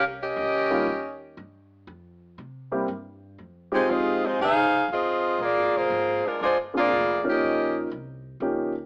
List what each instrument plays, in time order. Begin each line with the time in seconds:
Already playing: upright bass C2
0.22 saxophone section C#4 G4 A#4 D#5
0.36 upright bass C#2
0.70 grand piano G3 A#3 C#4 D#4 F4
0.86 upright bass D#2
1.37 upright bass G2
1.87 upright bass F2
2.38 upright bass C3
2.71 grand piano G3 A#3 C4 E4 G4
2.88 upright bass G2
3.38 upright bass F2
3.72 grand piano F3 G#3 C4 D#4 G4, saxophone section G#3 D#4 F4 C5
3.89 upright bass D#2, saxophone section C4 F4 G#4 D#5
4.26 saxophone section G#3 D#4 F4 C5
4.39 upright bass C2, saxophone section D#4 G#4 C5 F5
4.88 upright bass D#2, saxophone section G#4
4.93 saxophone section C4 F4 D#5
5.38 upright bass A#1, saxophone section F4 G#4 D5
5.43 saxophone section A#3
5.56 upright bass G#1
5.73 upright bass F1, saxophone section A#3 G#4 C5
5.77 saxophone section F4
5.90 upright bass G#1
6.26 saxophone section G#3 D4 F4 A#4, muted upright bass stroke
6.41 upright bass G1, saxophone section G#3 D4 F4 C5
6.74 grand piano F3 A#3 C4 D4 G#4, saxophone section A#3 F4 G#4 D5
6.92 upright bass F1
7.24 grand piano F3 A#3 C#4 D#4 A#4, muted upright bass stroke
7.29 saxophone section C#4 G4 A#4 D#5
7.41 upright bass A#1
7.91 upright bass C2
8.40 upright bass C#2, grand piano F3 A#3 C#4 D#4 G4